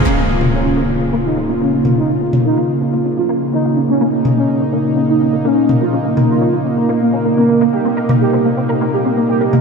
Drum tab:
T2 |---o-----------o|---o------------|---o-----------o|---o------------|

T2 |---o-----------o|